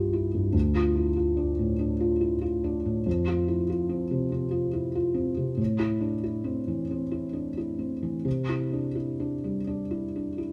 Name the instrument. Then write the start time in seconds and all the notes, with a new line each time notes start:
felt piano
Already playing: G2 E4 F4 G4
0.13 E4
0.35 G2
0.53 D2
0.75 F4
0.95 E4
1.16 F4
1.37 D4
1.59 A2
1.79 D4
2.00 F4
2.21 E4
2.41 F4
2.64 D4
2.85 A2
3.06 F2
3.28 F4
3.48 E4
3.70 F4
3.89 C4
4.11 C3
4.32 C4
4.51 F4
4.73 E4
4.95 F4
5.14 C4
5.37 C3
5.57 A2
5.79 E4
6.01 D4
6.24 E4
6.44 C4
6.68 E3
6.91 C4
7.11 E4
7.33 D4
7.57 E4
7.79 C4
8.03 E3
8.25 C3
8.49 E4
8.73 D4
8.95 E4
9.20 D4
9.44 G3
9.67 D4
9.91 E4
10.16 D4
10.38 E4